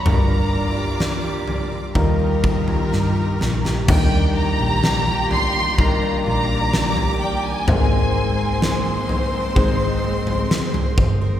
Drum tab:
CC |----------------|x---------------|----------------|
SD |----o-------o-oo|----o-------o---|----o-------o---|
FT |o-----o-o--o----|o-----o-o----o--|o-----o-o--o-o--|
BD |--------o-o-----|o-------o-------|--------o-----o-|